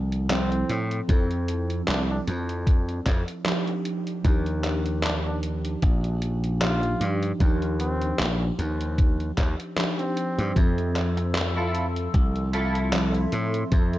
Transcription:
0.00 0.62 C2 medium
0.00 0.25 F3 medium
0.00 0.26 C4 medium
0.00 0.26 E4 medium
0.00 0.26 A4 medium
0.12 closed hi-hat medium
0.29 1.04 F3 medium
0.29 1.05 C4 medium
0.29 0.78 C4 medium
0.29 1.05 E4 medium
0.29 1.05 A4 medium
0.29 clap loud
0.29 closed hi-hat medium
0.52 closed hi-hat soft
0.69 1.00 A2 medium
0.69 closed hi-hat medium
0.91 closed hi-hat medium
1.07 1.81 F2 loud
1.07 3.41 F3 medium
1.07 3.41 C4 medium
1.07 3.42 E4 medium
1.07 3.42 A4 medium
1.07 kick loud
1.07 closed hi-hat medium
1.31 closed hi-hat soft
1.48 closed hi-hat medium
1.70 closed hi-hat medium
1.88 2.18 C2 medium
1.88 2.02 D4 medium
1.88 clap loud
1.88 closed hi-hat medium
2.10 2.21 D4 medium
2.27 2.99 F2 loud
2.27 closed hi-hat medium
2.49 closed hi-hat medium
2.67 kick loud
2.67 closed hi-hat medium
2.89 closed hi-hat soft
3.06 3.22 F2 medium
3.06 kick medium
3.06 clap medium
3.06 closed hi-hat medium
3.28 closed hi-hat medium
3.45 4.20 F3 medium
3.45 4.20 D4 medium
3.45 4.21 D#4 medium
3.45 4.21 G4 medium
3.45 clap loud
3.45 closed hi-hat medium
3.67 closed hi-hat soft
3.85 closed hi-hat medium
4.07 closed hi-hat medium
4.23 5.75 D#2 loud
4.23 6.57 F3 medium
4.23 6.57 D4 medium
4.23 6.58 D#4 medium
4.23 6.58 G4 medium
4.23 kick loud
4.23 closed hi-hat medium
4.46 closed hi-hat soft
4.64 clap medium
4.64 closed hi-hat medium
4.86 closed hi-hat medium
5.03 5.18 D4 medium
5.03 clap loud
5.03 closed hi-hat medium
5.26 5.37 D4 medium
5.43 closed hi-hat medium
5.65 closed hi-hat medium
5.82 6.94 A#1 medium
5.82 kick loud
5.82 closed hi-hat medium
6.04 closed hi-hat soft
6.22 closed hi-hat medium
6.44 closed hi-hat medium
6.61 7.36 F3 medium
6.61 7.36 D4 medium
6.61 7.36 D#4 medium
6.61 7.10 F4 medium
6.61 7.37 G4 medium
6.61 clap loud
6.61 closed hi-hat medium
6.83 closed hi-hat soft
7.01 7.31 G2 medium
7.01 closed hi-hat medium
7.23 closed hi-hat medium
7.39 8.12 D#2 loud
7.39 9.72 F3 medium
7.39 9.73 D4 medium
7.39 9.73 D#4 medium
7.39 9.74 G4 medium
7.39 kick loud
7.39 closed hi-hat medium
7.62 closed hi-hat soft
7.80 8.28 C4 medium
7.80 closed hi-hat medium
8.02 closed hi-hat medium
8.19 8.50 A#1 loud
8.19 clap loud
8.19 closed hi-hat medium
8.59 9.30 D#2 loud
8.59 closed hi-hat medium
8.81 closed hi-hat medium
8.98 kick loud
8.98 closed hi-hat medium
9.20 closed hi-hat soft
9.38 9.54 D#2 medium
9.38 kick medium
9.38 clap medium
9.38 closed hi-hat medium
9.60 closed hi-hat medium
9.77 10.52 F3 medium
9.77 10.52 D4 medium
9.77 10.52 D#4 medium
9.77 10.52 G4 medium
9.77 clap loud
9.77 closed hi-hat medium
9.99 10.56 C4 medium
9.99 closed hi-hat soft
10.17 closed hi-hat medium
10.38 10.52 G2 medium
10.38 closed hi-hat soft
10.55 12.07 F2 loud
10.55 12.88 F3 medium
10.55 12.89 C4 medium
10.55 13.98 A4 medium
10.55 12.90 A4 medium
10.55 12.89 E5 medium
10.55 13.98 C6 medium
10.55 13.69 E6 medium
10.55 kick loud
10.55 closed hi-hat medium
10.78 closed hi-hat soft
10.96 muted clean electric guitar stroke loud
10.96 clap medium
10.96 closed hi-hat medium
11.17 muted clean electric guitar stroke medium
11.17 closed hi-hat soft
11.35 muted clean electric guitar stroke soft
11.35 clap loud
11.35 closed hi-hat medium
11.56 11.85 E4 medium
11.56 11.86 F4 medium
11.56 11.86 A4 medium
11.75 closed hi-hat medium
11.96 closed hi-hat medium
12.14 13.25 C2 medium
12.14 muted clean electric guitar stroke soft
12.14 kick loud
12.14 closed hi-hat medium
12.36 closed hi-hat soft
12.53 13.33 E4 loud
12.53 13.33 F4 medium
12.53 13.33 A4 loud
12.53 closed hi-hat medium
12.75 closed hi-hat soft
12.93 13.68 F3 medium
12.93 13.68 C4 medium
12.93 13.68 A4 medium
12.93 13.68 E5 medium
12.93 clap loud
12.93 closed hi-hat medium
13.14 closed hi-hat soft
13.32 13.63 A2 medium
13.32 closed hi-hat medium
13.54 closed hi-hat medium
13.70 13.98 F2 loud
13.70 13.98 F3 medium
13.70 13.98 C4 medium
13.70 13.98 A4 medium
13.70 13.98 E5 medium
13.70 kick loud
13.70 closed hi-hat medium
13.93 closed hi-hat soft

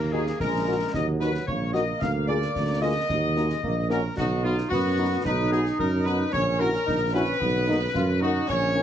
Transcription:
0.00 0.31 D#2 medium
0.00 0.37 A#3 medium
0.00 0.11 A#4 medium
0.12 0.23 D#4 medium
0.12 0.23 F#4 medium
0.12 0.39 G#4 medium
0.12 0.25 G#4 medium
0.12 0.23 A#4 medium
0.27 snare soft
0.40 0.85 A#1 medium
0.40 0.90 G#3 medium
0.40 0.90 A#4 medium
0.40 concert bass drum medium
0.40 snare medium
0.66 0.76 D#4 medium
0.66 0.76 F#4 medium
0.66 0.76 A#4 medium
0.93 1.39 D#2 medium
0.93 1.44 F#3 medium
0.93 1.05 D#5 medium
0.93 1.06 D#5 medium
0.93 concert bass drum medium
0.93 snare medium
1.20 1.30 D#4 medium
1.20 1.30 F#4 medium
1.20 1.30 A#4 medium
1.20 1.45 B4 medium
1.20 1.33 B4 medium
1.20 snare soft
1.35 snare soft
1.47 1.93 A#1 medium
1.47 2.00 A#3 medium
1.47 1.72 C#5 medium
1.47 1.73 C#5 medium
1.47 concert bass drum medium
1.73 1.84 D#4 medium
1.73 1.84 F#4 medium
1.73 1.84 A#4 medium
1.73 1.99 D#5 medium
1.73 2.00 D#5 medium
1.73 snare medium
2.00 2.46 D2 medium
2.00 3.05 A#3 medium
2.00 2.13 F5 medium
2.00 2.28 F5 loud
2.00 concert bass drum medium
2.00 snare medium
2.28 2.38 A#3 medium
2.28 2.38 F4 medium
2.28 2.38 G#4 medium
2.28 2.78 D5 medium
2.42 snare medium
2.55 2.96 D2 medium
2.55 concert bass drum medium
2.55 snare medium
2.82 2.92 A#3 medium
2.82 2.91 F4 medium
2.82 2.92 G#4 medium
2.82 3.86 D#5 loud
2.82 3.86 D#5 medium
3.09 3.54 D#2 medium
3.09 3.37 F#3 medium
3.09 concert bass drum medium
3.09 snare medium
3.36 3.63 G#3 medium
3.36 3.46 A#3 medium
3.36 3.46 D#4 medium
3.36 3.46 F#4 medium
3.36 snare medium
3.50 snare medium
3.63 4.08 A#1 medium
3.63 3.75 A#3 medium
3.63 concert bass drum medium
3.90 4.00 A#3 medium
3.90 4.02 C#4 medium
3.90 4.00 D#4 medium
3.90 4.00 F#4 medium
3.90 4.02 A#4 medium
3.90 4.17 A#4 medium
3.90 snare medium
4.16 4.62 B1 medium
4.16 4.68 D#4 medium
4.16 4.29 F#4 medium
4.16 4.42 F#4 loud
4.16 concert bass drum medium
4.16 snare medium
4.16 crash soft
4.43 4.53 B3 medium
4.43 4.53 D#4 medium
4.43 4.70 F4 loud
4.43 4.56 F4 medium
4.43 4.53 F#4 medium
4.58 snare medium
4.69 5.16 F#2 medium
4.69 5.21 B3 medium
4.69 5.20 F#4 loud
4.69 5.21 F#4 loud
4.69 concert bass drum medium
4.69 snare medium
4.98 5.08 B3 medium
4.98 5.08 D#4 medium
4.98 5.08 F#4 medium
5.24 5.70 B1 medium
5.24 6.29 D#4 loud
5.24 5.50 B4 loud
5.24 5.52 B4 loud
5.24 concert bass drum medium
5.24 snare medium
5.51 5.62 B3 medium
5.51 5.62 D#4 medium
5.51 5.62 F#4 medium
5.51 5.63 G#4 loud
5.51 5.77 G#4 medium
5.51 snare medium
5.66 snare medium
5.78 6.24 F#2 medium
5.78 5.90 A#4 medium
5.78 6.04 A#4 medium
5.78 concert bass drum medium
6.04 6.16 B3 medium
6.04 6.16 D#4 medium
6.04 6.16 F#4 medium
6.04 6.17 B4 loud
6.04 6.33 B4 medium
6.04 snare medium
6.32 6.78 A#1 medium
6.32 6.86 C#4 medium
6.32 6.58 C#5 loud
6.32 6.45 C#5 loud
6.32 concert bass drum medium
6.32 snare medium
6.59 6.70 C#4 medium
6.59 6.70 E4 medium
6.59 6.70 F#4 medium
6.59 7.09 A#4 loud
6.59 7.14 A#4 loud
6.74 snare medium
6.86 7.32 A#1 medium
6.86 6.98 D#4 medium
6.86 concert bass drum medium
6.86 snare medium
7.13 7.38 C#4 medium
7.13 7.24 C#4 medium
7.13 7.24 E4 medium
7.13 7.24 F#4 medium
7.13 8.21 B4 loud
7.13 8.18 B4 loud
7.39 7.86 B1 loud
7.39 7.67 B3 medium
7.39 concert bass drum medium
7.39 snare medium
7.67 7.77 A#3 medium
7.67 7.77 D#4 medium
7.67 7.80 D#4 medium
7.67 7.77 F#4 medium
7.94 8.39 F#2 loud
7.94 8.06 F4 loud
7.94 concert bass drum medium
7.94 snare medium
8.21 8.31 A#3 medium
8.21 8.46 D#4 medium
8.21 8.31 D#4 medium
8.21 8.48 F#4 medium
8.21 8.31 F#4 medium
8.21 8.47 F#4 loud
8.47 8.83 A#1 medium
8.47 8.83 C#4 loud
8.47 8.83 C#5 loud
8.47 concert bass drum medium
8.47 snare medium
8.47 crash medium
8.76 8.83 A#3 medium
8.76 8.83 C#4 medium
8.76 8.83 D#4 medium

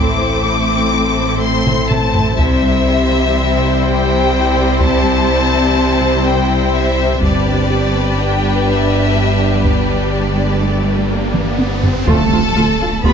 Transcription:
0.00 2.35 A1 medium
0.00 2.40 A1 medium
0.00 2.35 A2 medium
0.00 0.12 A3 medium
0.00 2.21 A3 soft
0.00 2.35 A3 soft
0.00 2.21 C4 medium
0.00 2.35 C4 soft
0.00 2.35 E4 medium
0.00 2.35 C5 medium
0.00 1.39 D6 medium
0.22 0.36 E4 medium
0.46 0.60 A4 medium
0.70 0.84 C4 medium
0.94 1.08 E4 medium
1.18 1.33 A3 medium
1.41 1.56 A4 medium
1.41 1.90 C6 medium
1.66 1.80 E4 medium
1.66 taiko low-mid medium
1.90 2.05 E4 medium
1.90 2.39 A5 medium
1.90 taiko low-mid medium
2.15 2.29 A4 medium
2.15 taiko low medium
2.38 7.23 C2 medium
2.38 7.19 C2 medium
2.38 2.54 C3 medium
2.38 7.19 C3 medium
2.38 7.19 G3 medium
2.38 8.15 C4 medium
2.38 7.19 C4 medium
2.38 7.19 E4 medium
2.38 7.19 C5 medium
2.38 3.84 E5 medium
2.38 taiko medium
2.62 2.77 G3 medium
2.86 3.01 C4 medium
3.10 3.25 E3 medium
3.35 3.50 G3 medium
3.58 3.73 C3 medium
3.84 3.98 C4 medium
3.84 4.82 G5 loud
4.08 4.23 G3 medium
4.32 4.47 G3 medium
4.56 4.71 C4 medium
4.79 4.94 C3 medium
4.79 6.24 A5 loud
4.79 taiko medium
5.04 5.19 G3 medium
5.52 5.67 E3 medium
5.77 5.92 G3 medium
6.00 6.15 C3 medium
6.25 6.40 C4 medium
6.25 6.75 G5 medium
6.49 6.64 G3 medium
6.74 6.88 G3 medium
6.74 7.23 E5 medium
7.21 12.06 G1 medium
7.21 11.83 G1 medium
7.21 11.83 G2 medium
7.21 7.36 G3 medium
7.21 11.82 G3 medium
7.21 11.78 G3 medium
7.21 11.82 D4 medium
7.21 11.86 G4 medium
7.21 11.86 B4 medium
7.21 8.18 D5 medium
7.21 taiko medium
7.21 riser medium
7.46 7.61 D4 medium
7.70 7.85 G4 medium
7.95 8.09 B3 medium
8.19 11.82 B3 medium
8.19 8.33 D4 medium
8.19 8.68 G5 medium
8.43 8.58 G3 medium
8.67 8.82 G4 medium
8.67 9.65 E5 medium
8.92 9.07 D4 medium
9.16 9.31 D4 medium
9.40 9.55 G4 soft
9.65 9.79 G3 medium
9.65 11.83 D5 medium
9.65 taiko medium
9.89 10.04 D4 medium
10.13 10.28 G4 medium
10.37 10.52 B3 medium
10.61 10.76 D4 medium
10.85 11.00 G3 medium
11.10 11.24 G4 medium
11.34 11.49 D4 medium
11.34 taiko mid medium
11.58 11.73 D4 medium
11.58 taiko high medium
11.83 11.97 G4 medium
11.83 taiko low medium
12.06 13.13 D1 medium
12.06 12.15 D2 medium
12.06 12.22 D3 medium
12.06 12.24 F3 medium
12.06 12.23 A3 medium
12.06 13.00 A3 medium
12.06 12.15 A3 medium
12.06 12.15 F4 medium
12.06 12.99 A4 medium
12.06 12.99 A5 medium
12.06 taiko medium
12.06 impact medium
12.31 12.40 D2 medium
12.31 12.46 F3 medium
12.31 12.40 A3 soft
12.31 12.40 F4 medium
12.55 12.63 D2 medium
12.55 12.64 A3 medium
12.55 12.70 A3 medium
12.55 12.64 F4 soft
12.79 12.87 D2 medium
12.79 12.88 A3 medium
12.79 12.94 D4 medium
12.79 12.89 F4 medium
13.03 13.11 D2 medium
13.03 13.13 D3 medium
13.03 13.13 A3 soft
13.03 13.13 B3 medium
13.03 13.13 F4 soft
13.03 13.13 G4 medium
13.03 13.13 B4 medium
13.03 13.13 B5 medium
13.03 taiko medium

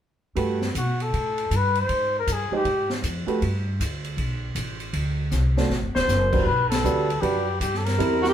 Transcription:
0.35 0.73 G2 medium
0.35 0.58 A3 soft
0.35 0.58 F#4 soft
0.35 0.58 G4 soft
0.35 0.58 B4 medium
0.35 kick soft
0.35 ride soft
0.62 snare soft
0.75 1.12 B2 medium
0.75 1.03 F#4 medium
0.75 kick soft
0.75 hi-hat pedal medium
0.75 ride soft
1.00 1.57 A4 medium
1.00 ride soft
1.13 1.50 A2 medium
1.13 kick soft
1.13 ride soft
1.38 ride soft
1.51 1.88 G2 medium
1.51 kick soft
1.51 hi-hat pedal soft
1.51 ride soft
1.56 1.81 B4 medium
1.75 ride soft
1.80 2.16 C5 medium
1.89 2.26 G#2 medium
1.89 kick soft
1.89 ride soft
2.19 2.34 A#4 medium
2.27 2.50 G2 medium
2.27 kick soft
2.27 hi-hat pedal medium
2.27 ride soft
2.32 2.54 G#4 medium
2.51 2.64 G#3 medium
2.51 2.64 D#4 soft
2.51 2.64 G4 soft
2.51 2.65 C5 medium
2.51 muted upright bass stroke soft
2.56 2.89 G4 medium
2.64 3.02 G#2 medium
2.64 kick soft
2.64 ride soft
2.90 snare soft
3.03 3.26 F2 medium
3.03 kick soft
3.03 hi-hat pedal soft
3.03 ride medium
3.27 3.40 A3 medium
3.27 3.40 F#4 soft
3.27 3.40 G4 soft
3.27 3.40 B4 medium
3.27 muted upright bass stroke soft
3.27 ride soft
3.42 3.79 G2 medium
3.42 kick soft
3.42 ride soft
3.80 4.17 D2 medium
3.80 kick soft
3.80 hi-hat pedal medium
3.80 ride medium
4.04 ride soft
4.17 4.54 B1 medium
4.17 kick soft
4.17 ride soft
4.55 4.92 A1 medium
4.55 kick soft
4.55 hi-hat pedal soft
4.55 ride medium
4.80 ride soft
4.93 5.31 D2 medium
4.93 kick soft
4.93 ride soft
5.32 5.69 C2 medium
5.32 snare soft
5.32 hi-hat pedal medium
5.57 5.69 A3 soft
5.57 5.69 D4 soft
5.57 5.69 F#4 soft
5.57 5.69 C5 medium
5.57 snare medium
5.69 5.84 A1 medium
5.69 snare soft
5.83 5.95 F#1 soft
5.95 6.07 D1 medium
5.95 6.47 C5 medium
5.95 snare medium
6.08 6.45 F#1 medium
6.08 snare soft
6.08 hi-hat pedal medium
6.32 6.45 G3 soft
6.32 6.45 D4 soft
6.32 6.45 F#4 soft
6.32 6.45 B4 medium
6.32 kick medium
6.32 crash medium
6.45 6.83 B1 medium
6.45 6.68 B4 medium
6.45 kick soft
6.69 7.22 A4 medium
6.69 snare medium
6.69 ride medium
6.84 7.21 D2 medium
6.84 7.06 G3 medium
6.84 7.06 D4 medium
6.84 7.06 F#4 medium
6.84 7.07 B4 medium
6.84 hi-hat pedal medium
7.10 ride soft
7.21 7.59 F#2 medium
7.21 7.44 G3 soft
7.21 7.44 D4 soft
7.21 7.44 F#4 soft
7.21 7.60 G4 medium
7.21 7.44 B4 medium
7.21 kick soft
7.21 ride soft
7.60 7.98 G2 medium
7.60 7.79 G4 medium
7.60 kick soft
7.60 hi-hat pedal soft
7.60 ride medium
7.74 7.86 A4 medium
7.74 snare soft
7.85 8.34 A#4 medium
7.85 snare soft
7.85 ride soft
7.98 8.34 E2 medium
7.98 8.34 G3 medium
7.98 8.34 C4 soft
7.98 8.34 E4 medium
7.98 8.34 A#4 medium
7.98 kick soft
7.98 ride medium
8.22 8.28 F#4 medium
8.22 snare soft
8.29 8.34 G4 medium

